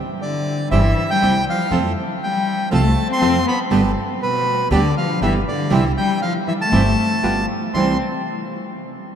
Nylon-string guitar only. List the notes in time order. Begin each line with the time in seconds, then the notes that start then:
0.72 C3 E3 G3 C4 E4
1.23 C3 E3 G3 C4 E4
1.72 C3 F3 A3 C4 F4
2.71 C3 F3 A3 C4 F4
3.21 C3 F3 A3 C4 F4
3.70 D3 G3 B3 G4
4.71 D3 G3 B3 G4
5.21 D3 G3 B3 G4
5.70 C3 E3 G3 C4 E4
6.72 C3 E3 G3 C4 E4
7.23 G3 B3 F4
7.75 C3 E3 G3 C4 E4